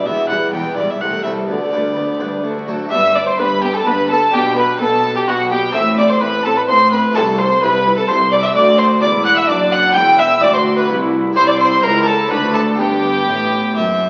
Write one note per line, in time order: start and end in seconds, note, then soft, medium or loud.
0.05 0.13 E1 medium
0.05 0.13 E2 medium
0.05 0.27 E2 soft
0.05 0.27 E3 medium
0.05 0.28 B3 medium
0.05 0.28 G4 medium
0.05 0.29 E5 medium
0.29 0.37 E1 medium
0.29 0.37 E2 medium
0.29 0.51 E2 soft
0.29 0.53 G3 medium
0.29 0.64 B3 soft
0.29 0.53 E4 soft
0.29 0.53 B4 medium
0.29 0.64 B4 soft
0.29 0.52 F#5 medium
0.52 0.61 E1 medium
0.52 0.60 E2 medium
0.52 0.74 E2 soft
0.52 0.76 E3 medium
0.52 0.76 B3 soft
0.52 0.77 G4 medium
0.52 0.76 G5 medium
0.76 0.84 E1 medium
0.76 0.84 E2 medium
0.76 0.98 E2 soft
0.76 1.01 G3 soft
0.76 0.94 B3 soft
0.76 1.00 E4 soft
0.76 0.94 B4 soft
0.76 1.01 B4 soft
0.76 0.92 D5 medium
0.90 1.02 E5 medium
1.00 1.08 C2 medium
1.00 1.09 C2 medium
1.00 1.22 C2 medium
1.00 1.23 A3 medium
1.00 1.22 C4 soft
1.00 1.23 G4 medium
1.00 1.23 F#5 medium
1.23 1.31 C2 medium
1.23 1.32 C2 medium
1.23 1.46 C2 soft
1.23 1.48 G3 soft
1.23 1.48 A3 soft
1.23 1.42 C4 soft
1.23 1.42 A4 soft
1.23 1.31 E5 medium
1.27 1.50 A4 soft
1.46 1.56 D2 medium
1.46 1.70 D2 soft
1.46 1.70 D3 medium
1.46 1.69 B3 medium
1.46 2.41 D5 medium
1.51 1.72 D5 medium
1.71 1.79 D2 medium
1.71 1.80 D2 medium
1.71 1.94 D2 soft
1.71 1.96 G3 soft
1.71 2.07 B3 soft
1.71 1.95 D4 soft
1.71 2.07 B4 soft
1.71 1.97 B4 soft
1.95 2.04 D2 medium
1.95 2.18 D2 soft
1.95 2.20 D3 soft
1.95 2.19 B3 soft
1.95 2.21 D5 soft
2.19 2.27 D2 soft
2.19 2.27 D2 medium
2.19 2.41 D2 soft
2.19 2.43 G3 medium
2.19 2.37 B3 soft
2.19 2.42 D4 soft
2.19 2.37 B4 soft
2.19 2.44 B4 soft
2.43 2.51 D2 medium
2.43 2.65 D2 soft
2.43 2.66 A3 soft
2.43 2.65 D4 soft
2.43 2.67 F#4 medium
2.67 2.75 D2 medium
2.67 2.76 D2 medium
2.67 2.89 D2 soft
2.67 2.92 F#3 soft
2.67 2.85 D4 soft
2.67 2.91 F#4 medium
2.67 2.85 A4 soft
2.67 2.92 A4 soft
2.89 3.33 G1 medium
2.89 3.33 G2 medium
2.89 3.30 G2 medium
2.89 3.00 B3 medium
2.89 4.28 D4 medium
2.89 4.28 G4 medium
2.89 3.13 E5 loud
2.89 3.16 E5 loud
2.89 3.14 E6 loud
3.15 3.23 B3 medium
3.15 3.28 D5 medium
3.15 3.27 D5 medium
3.15 3.27 D6 medium
3.26 3.38 C5 medium
3.26 3.39 C5 medium
3.30 3.40 C6 medium
3.38 3.80 G1 medium
3.38 3.80 G2 medium
3.38 3.77 G2 medium
3.38 3.46 B3 medium
3.38 3.62 B4 medium
3.38 3.47 B4 medium
3.38 3.63 B5 loud
3.62 3.71 B3 medium
3.62 3.73 G4 medium
3.62 3.76 G4 medium
3.62 3.75 G5 medium
3.74 3.86 A4 medium
3.74 3.88 A4 medium
3.74 3.87 A5 medium
3.86 4.28 G1 medium
3.86 4.27 G2 medium
3.86 4.24 G2 medium
3.86 3.94 B3 medium
3.86 4.09 B4 medium
3.86 4.10 B4 medium
3.86 4.10 B5 loud
4.10 4.18 B3 medium
4.10 4.33 A4 medium
4.10 4.32 A4 medium
4.10 4.33 A5 loud
4.31 4.75 B1 medium
4.31 4.75 B2 medium
4.31 4.72 B2 medium
4.31 4.41 B3 medium
4.31 5.69 D4 medium
4.31 5.70 G4 medium
4.31 4.41 G4 medium
4.31 4.57 G4 loud
4.31 4.57 G5 loud
4.56 4.65 B3 medium
4.56 4.79 B4 medium
4.56 4.80 B4 medium
4.56 4.81 B5 loud
4.80 5.22 B1 medium
4.80 5.22 B2 medium
4.80 5.19 B2 medium
4.80 4.89 B3 medium
4.80 5.15 A4 medium
4.80 5.17 A4 medium
4.80 5.15 A5 loud
5.04 5.12 B3 medium
5.16 5.21 G4 medium
5.16 5.28 G4 medium
5.16 5.28 G5 medium
5.27 5.69 B1 medium
5.27 5.69 B2 medium
5.27 5.66 B2 medium
5.27 5.36 B3 medium
5.27 5.36 F#4 medium
5.27 5.52 F#4 medium
5.27 5.50 F#5 loud
5.50 5.59 B3 medium
5.50 5.73 G4 medium
5.50 5.59 G4 medium
5.50 5.74 G5 loud
5.70 7.09 C4 medium
5.70 5.82 C4 medium
5.70 7.10 E4 medium
5.70 7.10 A4 medium
5.70 5.82 E5 loud
5.74 6.16 A1 medium
5.74 6.16 A2 medium
5.74 6.13 A2 medium
5.74 5.98 E5 loud
5.74 5.98 E6 loud
5.98 6.06 C4 medium
5.98 6.11 D5 medium
5.98 6.03 D5 medium
5.98 6.10 D6 loud
6.09 6.14 C5 medium
6.09 6.22 C5 medium
6.09 6.22 C6 medium
6.21 6.63 A1 medium
6.21 6.62 A2 medium
6.21 6.59 A2 medium
6.21 6.30 C4 medium
6.21 6.46 B4 loud
6.21 6.30 B4 medium
6.21 6.45 B5 loud
6.44 6.54 C4 medium
6.44 6.58 A4 medium
6.44 6.56 A4 medium
6.44 6.57 A5 loud
6.57 6.68 B4 medium
6.57 6.62 B5 medium
6.67 7.10 A1 medium
6.67 7.09 A2 medium
6.67 7.06 A2 medium
6.67 6.78 C4 medium
6.67 6.90 C5 loud
6.67 6.92 C5 medium
6.67 6.91 C6 loud
6.91 7.01 C4 medium
6.91 7.16 B4 medium
6.91 7.01 B4 medium
6.91 7.01 B5 loud
7.11 7.56 C2 medium
7.11 8.49 A3 medium
7.11 8.50 E4 medium
7.11 8.51 A4 medium
7.11 7.39 A4 loud
7.15 7.53 C2 medium
7.15 7.57 C2 medium
7.15 7.24 E4 medium
7.15 7.25 A4 loud
7.15 7.23 A5 loud
7.38 7.48 E4 medium
7.38 7.62 C5 loud
7.38 7.62 C5 medium
7.38 7.62 C6 loud
7.62 8.03 C2 medium
7.62 8.00 C2 medium
7.62 8.04 C2 medium
7.62 7.71 E4 medium
7.62 7.96 B4 loud
7.62 7.98 B4 medium
7.62 7.97 B5 loud
7.87 7.95 E4 medium
7.96 8.07 A4 medium
7.96 8.09 A4 medium
7.96 8.09 A5 medium
8.08 8.50 C2 medium
8.08 8.47 C2 medium
8.08 8.18 E4 medium
8.08 8.16 C5 loud
8.08 8.32 C5 medium
8.08 8.32 C6 loud
8.30 8.41 E4 medium
8.30 8.42 D5 loud
8.30 8.44 D5 loud
8.30 8.44 D6 loud
8.43 8.48 E5 medium
8.43 8.55 E5 medium
8.43 8.56 E6 loud
8.52 8.99 D2 medium
8.52 8.99 A3 medium
8.52 9.90 F#4 medium
8.52 9.91 A4 medium
8.52 8.80 D5 loud
8.52 8.78 D5 loud
8.56 8.99 D2 loud
8.56 8.99 D2 medium
8.56 9.00 F#4 medium
8.56 8.64 D6 loud
8.78 8.86 C5 medium
8.78 9.01 C5 medium
8.78 8.86 C6 loud
9.02 9.48 E1 medium
9.02 9.48 E2 medium
9.02 9.45 E2 medium
9.02 9.49 E4 medium
9.02 9.10 D5 loud
9.02 9.10 D5 medium
9.02 9.25 D6 loud
9.25 9.39 F#5 loud
9.25 9.37 F#5 loud
9.25 9.36 F#6 loud
9.37 9.49 E5 loud
9.37 9.50 E5 loud
9.37 9.48 E6 loud
9.48 9.95 F#1 medium
9.48 9.94 F#2 loud
9.48 9.92 F#2 medium
9.48 9.95 D4 medium
9.48 9.71 D5 loud
9.48 9.73 D5 loud
9.48 9.57 D6 loud
9.71 9.95 F#5 loud
9.71 9.94 F#5 loud
9.71 9.80 F#6 loud
9.92 10.42 E1 loud
9.92 10.42 E2 medium
9.92 10.38 E2 medium
9.92 11.31 E4 medium
9.92 10.42 E4 medium
9.92 10.18 G5 loud
9.92 10.20 G5 loud
9.92 10.02 G6 loud
10.18 10.42 E5 loud
10.18 10.42 E6 loud
10.41 10.88 D2 medium
10.41 10.85 D2 medium
10.41 10.89 D2 medium
10.41 10.89 F#4 medium
10.41 10.46 D5 loud
10.41 10.53 D5 loud
10.41 10.54 D6 loud
10.54 10.62 C5 medium
10.54 10.78 C6 loud
10.76 10.89 B4 medium
10.76 10.90 B5 loud
10.88 11.32 C2 medium
10.88 11.34 C2 medium
10.88 11.35 C2 medium
10.88 11.34 E4 medium
11.33 11.82 C2 loud
11.33 11.79 C2 medium
11.33 11.79 E4 medium
11.33 11.82 E4 medium
11.33 11.81 G4 medium
11.33 11.47 C5 loud
11.33 11.49 C5 loud
11.33 11.47 C6 loud
11.37 11.83 C2 loud
11.47 11.60 D5 loud
11.47 11.58 D5 loud
11.47 11.60 D6 loud
11.59 11.85 C5 loud
11.59 11.83 C5 loud
11.59 11.83 C6 loud
11.81 12.30 C#2 medium
11.81 12.27 C#2 medium
11.81 12.30 C#2 medium
11.81 12.28 E4 medium
11.81 12.30 E4 medium
11.81 12.29 G4 medium
11.81 12.07 A#4 loud
11.81 12.08 A#4 loud
11.81 12.07 A#5 loud
12.06 12.32 A4 medium
12.06 12.31 A4 loud
12.06 12.31 A5 loud
12.27 12.78 D2 medium
12.27 12.76 C4 medium
12.27 12.75 D4 medium
12.27 12.77 F#4 medium
12.27 12.54 B4 loud
12.27 12.53 B4 medium
12.27 12.54 B5 loud
12.31 12.76 D2 medium
12.31 12.79 D4 medium
12.54 12.62 A4 medium
12.54 12.79 A4 medium
12.54 12.62 A5 loud
12.75 13.24 B3 medium
12.75 13.25 D4 medium
12.75 14.10 G4 medium
12.75 13.73 G4 medium
12.79 13.27 G1 loud
12.79 13.26 G2 medium
12.79 13.24 G2 medium
12.79 14.04 B3 medium
12.79 14.00 G4 medium
12.79 13.97 G5 loud
13.27 13.75 A1 medium
13.27 13.75 A2 medium
13.27 13.72 A2 medium
13.75 14.10 F#1 medium
13.75 14.10 F#2 medium
13.75 14.10 E5 medium